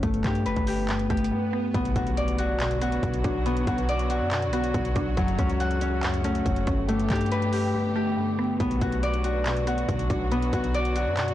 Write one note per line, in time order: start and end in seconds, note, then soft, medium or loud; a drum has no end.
0.00 0.23 G1 loud
0.00 0.87 G2 loud
0.00 3.36 A3 medium
0.00 2.23 C#4 medium
0.00 0.11 F#4 medium
0.00 0.30 F#5 medium
0.00 kick loud
0.00 closed hi-hat medium
0.00 swell medium
0.14 closed hi-hat medium
0.24 0.47 G2 loud
0.24 0.67 G4 medium
0.24 kick medium
0.24 clap loud
0.24 closed hi-hat medium
0.35 closed hi-hat medium
0.46 0.56 F#1 medium
0.46 2.51 B4 loud
0.46 closed hi-hat medium
0.56 1.08 G1 loud
0.56 kick loud
0.56 closed hi-hat medium
0.67 1.10 G4 medium
0.67 open hi-hat loud
0.89 1.30 G2 medium
0.89 clap loud
0.89 closed hi-hat medium
0.99 closed hi-hat medium
1.10 1.31 G1 loud
1.10 1.74 A3 medium
1.10 2.02 G4 medium
1.10 kick loud
1.10 closed hi-hat medium
1.17 closed hi-hat medium
1.24 closed hi-hat medium
1.32 1.74 G2 medium
1.53 1.74 B3 medium
1.74 1.95 B1 loud
1.74 2.59 B2 medium
1.74 5.14 D3 medium
1.74 6.85 F#3 medium
1.74 5.14 B3 medium
1.74 3.45 B3 loud
1.74 6.85 F#4 medium
1.74 kick loud
1.74 closed hi-hat medium
1.74 impact medium
1.85 closed hi-hat medium
1.96 2.99 B1 loud
1.96 2.38 F#4 medium
1.96 kick loud
1.96 closed hi-hat medium
2.07 closed hi-hat medium
2.17 3.88 D5 medium
2.17 closed hi-hat medium
2.28 closed hi-hat medium
2.38 2.81 F#4 medium
2.38 closed hi-hat loud
2.60 3.02 B2 loud
2.60 clap loud
2.60 closed hi-hat medium
2.71 closed hi-hat medium
2.81 3.89 B3 medium
2.81 3.67 F#4 medium
2.81 closed hi-hat loud
2.92 closed hi-hat medium
3.03 3.23 B1 loud
3.03 3.45 B2 medium
3.03 kick loud
3.03 closed hi-hat medium
3.14 closed hi-hat medium
3.24 3.65 B1 loud
3.24 4.31 D4 loud
3.24 kick loud
3.24 closed hi-hat medium
3.46 4.30 B2 medium
3.46 6.56 B3 loud
3.46 closed hi-hat medium
3.57 closed hi-hat medium
3.67 4.22 B1 loud
3.67 4.10 F#4 medium
3.67 kick loud
3.67 closed hi-hat medium
3.78 closed hi-hat medium
3.89 5.45 D5 loud
3.89 closed hi-hat medium
3.99 closed hi-hat medium
4.10 4.52 F#4 medium
4.10 closed hi-hat loud
4.21 4.49 F#2 loud
4.31 4.73 B2 medium
4.31 clap loud
4.31 closed hi-hat medium
4.42 closed hi-hat medium
4.48 4.73 B1 loud
4.53 5.17 B3 medium
4.53 6.96 F#4 medium
4.53 closed hi-hat loud
4.64 closed hi-hat medium
4.74 4.95 B1 loud
4.74 5.17 B2 medium
4.74 kick loud
4.74 closed hi-hat medium
4.85 closed hi-hat medium
4.96 5.16 B1 loud
4.96 5.17 D4 loud
4.96 kick loud
4.96 closed hi-hat medium
5.17 5.38 F#1 loud
5.17 6.02 F#2 loud
5.17 6.87 C#3 medium
5.17 6.94 F#3 loud
5.17 8.57 A3 medium
5.17 kick loud
5.17 closed hi-hat medium
5.28 closed hi-hat medium
5.39 6.42 C#2 loud
5.39 5.81 C#4 medium
5.39 kick loud
5.39 closed hi-hat medium
5.50 closed hi-hat medium
5.60 7.16 F#5 medium
5.60 closed hi-hat medium
5.71 closed hi-hat medium
5.81 6.24 C#4 medium
5.81 closed hi-hat loud
6.03 6.44 F#2 medium
6.03 clap loud
6.03 closed hi-hat medium
6.14 closed hi-hat medium
6.24 6.89 A3 medium
6.24 9.09 C#4 medium
6.24 closed hi-hat loud
6.35 closed hi-hat medium
6.45 6.66 F#1 loud
6.45 6.88 F#2 medium
6.45 kick loud
6.45 closed hi-hat medium
6.56 closed hi-hat medium
6.67 7.08 G1 loud
6.67 6.89 C#4 medium
6.67 kick loud
6.67 closed hi-hat medium
6.88 7.73 G2 loud
6.88 11.34 D3 medium
6.88 10.21 A3 loud
6.88 11.34 B3 medium
6.88 8.58 G4 medium
6.88 closed hi-hat medium
6.99 closed hi-hat medium
7.10 7.74 G2 loud
7.10 7.53 G4 medium
7.10 kick loud
7.10 clap loud
7.10 closed hi-hat medium
7.15 closed hi-hat medium
7.21 closed hi-hat medium
7.26 closed hi-hat soft
7.32 9.36 B4 loud
7.32 closed hi-hat medium
7.42 closed hi-hat medium
7.53 7.96 G4 medium
7.53 open hi-hat loud
7.74 8.16 G2 medium
7.96 8.60 A3 medium
7.96 8.88 G4 medium
8.17 8.60 G2 medium
8.39 8.60 B3 medium
8.60 8.81 B1 loud
8.60 9.44 B2 medium
8.60 11.34 F#3 medium
8.60 10.31 B3 loud
8.60 11.34 F#4 medium
8.60 kick loud
8.60 closed hi-hat medium
8.71 closed hi-hat medium
8.81 9.85 B1 loud
8.81 9.24 F#4 medium
8.81 kick medium
8.81 closed hi-hat medium
8.92 closed hi-hat medium
9.03 10.74 D5 medium
9.03 closed hi-hat medium
9.14 closed hi-hat medium
9.24 9.67 F#4 medium
9.24 closed hi-hat loud
9.46 9.87 B2 medium
9.46 clap loud
9.46 closed hi-hat medium
9.57 closed hi-hat medium
9.67 10.74 B3 medium
9.67 10.52 F#4 medium
9.67 closed hi-hat loud
9.78 closed hi-hat medium
9.89 10.09 B1 loud
9.89 10.31 B2 medium
9.89 kick medium
9.89 closed hi-hat medium
9.99 closed hi-hat medium
10.10 10.51 B1 loud
10.10 11.17 D4 loud
10.10 kick loud
10.10 closed hi-hat medium
10.31 11.16 B2 medium
10.31 11.34 B3 loud
10.31 closed hi-hat medium
10.42 closed hi-hat medium
10.53 11.08 B1 loud
10.53 10.96 F#4 medium
10.53 kick medium
10.53 closed hi-hat medium
10.64 closed hi-hat medium
10.74 11.34 D5 loud
10.74 closed hi-hat medium
10.85 closed hi-hat medium
10.96 11.34 F#4 medium
10.96 closed hi-hat loud
11.07 11.34 F#2 loud
11.17 11.34 B2 medium
11.17 clap loud
11.17 closed hi-hat medium
11.28 closed hi-hat medium